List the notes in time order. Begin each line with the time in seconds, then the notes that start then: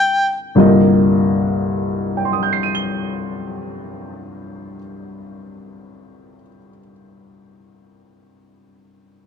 Already playing: C2 G2 D3 A#3 F4 D#5 G5
0.55 C2 G2 D3 A#3 F4 D#5
2.17 G5
2.25 C6
2.33 D#6
2.43 G6
2.53 C7
2.63 D#7
2.75 G7